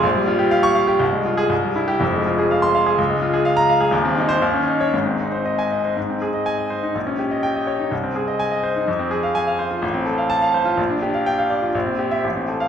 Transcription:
\new Staff \with { instrumentName = "Grand piano" } { \time 2/4 \key c \phrygian \tempo 4 = 124 << { r4 r16 des'''8 r16 | r8. aes'16 r8. g'16 | \key aes \major r4 r16 c'''8 r16 | r4 r16 bes''8 r16 |
r8. c''16 r8. des''16 | r4 r16 aes''8 r16 | r4 aes''8 r8 | r4 g''8 r8 |
r4 aes''8 r8 | r4 aes''8 r8 | \key f \major r4 a''8 r8 | r4 g''8 r8 |
r8. e''16 r8. f''16 | } \\ { bes,,16 g16 f'16 g'16 f''8 f''16 g'16 | c,16 aes16 f'8 c,16 g16 e'8 | <f,, f,>16 aes16 f'16 aes'16 f''8 f''16 aes'16 | des,16 aes16 f'16 aes'16 f''8 f''16 aes'16 |
<ees,, ees,>16 c'16 ees'8 ees,16 des'16 ees'8 | <aes,, aes,>16 c'16 ees'16 c''16 ees''8 ees''16 c''16 | aes,16 c'16 aes'16 ees''8 ees''16 c''16 ees'16 | bes,,16 des'16 g'16 ees''8 ees''16 des''16 ees'16 |
c,16 c'16 aes'16 ees''8 ees''16 c''16 ees'16 | f,16 c'16 aes'16 f''8 f''16 c''16 f'16 | a,,16 c'16 a'16 f''8 f''16 c''16 f'16 | bes,,16 d'16 g'16 f''8 f''16 d''16 f'16 |
bes,,16 c'16 g'8 a,,16 c'16 a'8 | } >> }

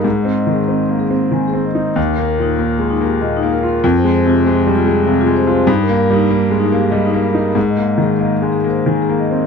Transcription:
<<
  \new Staff \with { instrumentName = "Vibraphone" } { \time 3/4 \key ees \major \tempo 4 = 96 aes'16 ees''16 ees''16 aes'16 ees''16 r16 aes'16 c''16 aes''16 aes'16 ees''16 ees''16 | ees'16 bes'16 bes'16 ees'16 bes'16 r16 ees'16 g'16 ees''16 ees'16 bes'16 bes'16 | f'16 c''16 c''16 f'16 c''16 r16 f'16 aes'16 f''16 f'16 c''16 c''16 | ees'16 bes'16 bes'16 ees'16 bes'16 r16 ees'16 g'16 ees''16 ees'16 bes'16 bes'16 |
aes'16 ees''16 ees''16 aes'16 ees''16 r16 aes'16 c''16 aes''16 aes'16 ees''16 ees''16 | }
  \new Staff \with { instrumentName = "Grand piano" } { \clef bass \time 3/4 \key ees \major \tuplet 3/2 { aes,8 c'8 ees8 c'8 bes8 c'8 ees8 c'8 ees'8 } | \tuplet 3/2 { ees,8 bes8 bes,8 bes8 aes8 bes8 bes,8 bes8 f'8 } | \tuplet 3/2 { f,8 aes8 c8 aes8 g8 aes8 c8 aes8 f'8 } | \tuplet 3/2 { g,8 bes8 g8 bes8 aes8 bes8 g8 bes8 ees'8 } |
\tuplet 3/2 { aes,8 bes8 ees8 bes8 aes8 bes8 ees8 bes8 c'8 } | }
>>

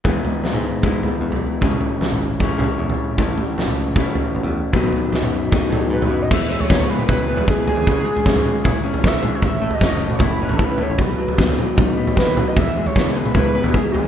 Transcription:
<<
  \new Staff \with { instrumentName = "Analog synth lead" } { \time 4/4 \key e \major \tempo 4 = 154 r1 | r1 | r1 | r2. b'8. dis''16 |
e''8. cis''8. b'8 b'8 b'8 gis'8 gis'8~ | gis'2~ gis'8 r8 e''8. cis''16 | e''8. dis''4 cis''16 b'8. a'16 b'8 cis''8 | b'4 r2 b'8. dis''16 |
e''8. cis''8. b'8 b'8 b'8 gis'8 gis'8 | }
  \new Staff \with { instrumentName = "Clean electric guitar" } { \clef bass \time 4/4 \key e \major <e gis b e'>2 <e gis b e'>2 | <cis gis cis' e'>2 <cis gis cis' e'>2 | <a, e a cis' e'>2 <a, e a cis' e'>2 | <b, dis fis b dis'>2 <b, dis fis b dis'>2 |
e8 gis8 b8 gis8 e'8 b8 e8 gis8 | cis8 gis8 cis'8 gis8 e'8 cis'8 cis8 gis8 | a,8 a8 cis'8 a8 e'8 cis'8 e8 a8 | b,8 fis8 b8 fis8 dis'8 b8 dis8 fis8 |
e8 gis8 b8 gis8 e'8 b8 e8 gis8 | }
  \new Staff \with { instrumentName = "Picked electric bass" } { \clef bass \time 4/4 \key e \major e,8 r8. gis,4.~ gis,16 e,16 b,,8 r16 | cis,8 r8. gis,,4~ gis,,16 cis16 r16 e,8 r8 | a,,8 r8. cis,4.~ cis,16 a,,16 e,8 r16 | b,,8 r8. fis,4~ fis,16 a,8 gis,8 fis,8 |
e,4 cis,4 cis,8. e,8 r8 dis,16 | cis,8 r8 fis,8 r8 cis,8 r8. b,,8 r16 | a,,4 fis,,4 fis,,8. a,,8 r8 a,,16 | b,,8 r8 dis,8 r8 b,,8 r8. dis,8 r16 |
e,4 cis,4 cis,8. e,8 r8 dis,16 | }
  \new DrumStaff \with { instrumentName = "Drums" } \drummode { \time 4/4 <bd tomfh>8 tomfh8 <sn tomfh>16 toml8. <bd tomfh>8 tomfh8 r16 tomfh8. | <bd tomfh>16 toml16 tomfh8 <sn tomfh>16 toml8. <bd tomfh>8 <tomfh toml>8 r16 <tomfh toml>8. | <bd tomfh>8 tomfh8 <sn tomfh>16 toml8. <bd tomfh>8 tomfh8 r16 tomfh8. | <bd tomfh>16 toml16 tomfh8 <sn tomfh>16 toml8. <bd tomfh>8 <tomfh toml>8 r16 <tomfh toml>8. |
<cymc bd tomfh>8. tomfh16 <bd sn>16 tomfh8 toml16 <bd tomfh toml>8. tomfh16 bd8 tomfh8 | <bd tomfh>8. tomfh16 <bd sn>16 tomfh16 toml8 <bd tomfh toml>8. tomfh16 <bd sn>8 <tomfh toml>8 | <bd tomfh>8. tomfh16 <bd sn>16 tomfh8 toml16 <bd tomfh toml>8. tomfh16 bd8 tomfh8 | <bd tomfh>8. tomfh16 <bd sn>16 tomfh16 toml8 <bd tomfh toml>8. tomfh16 <bd sn>8 <tomfh toml>8 |
<bd tomfh>8. tomfh16 <bd sn>16 tomfh8 toml16 <bd tomfh toml>8. tomfh16 bd8 tomfh8 | }
>>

